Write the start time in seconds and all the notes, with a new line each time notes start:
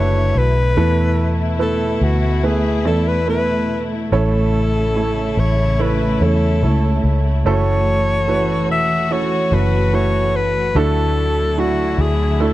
Already playing: F#1 D3 F#3 A3 D4 E4 F#4 G#4 A4 B4 C#5
0.35 B1 B4
0.77 E2 B2 E3 A3 B3 E4 A4 B4
1.59 A3 B3 E4 A4 B4
2.01 D2 F#4
2.43 A3 B3 E4 G#4 B4
2.85 E2 A3 B3 E4 A4 D5
3.08 B4
3.27 A3 B3 E4 A4 B4
4.12 A1 A2 C#3 A3 C#4 E4 A4 C#5
4.96 A3 C#4 E4 A4 C#5
5.37 A1 C#5
5.79 A3 C#4 E4 A4 B4 C#5
6.21 E2 A3 C#4 E4 A4 C#5
6.62 C#2 A3 C#4 E4 A4 C#5
7.03 C#2
7.45 F#1 E3 A3 C#4 E4 F#4 A4 C#5
8.28 A3 C#4 E4 F#4 B4
8.69 E1 E5
9.10 A3 C#4 E4 F#4 A4 C#5
9.52 F#1 A3 C#4 E4 F#4 B4
9.93 A3 C#4 E4 F#4 B4 C#5
10.36 B4
10.75 D2 D3 F#3 A3 D4 E4 F#4 A4
11.58 A3 D4 E4 F#4
11.98 D2 G#4
12.40 A3 D4 E4 F#4 A4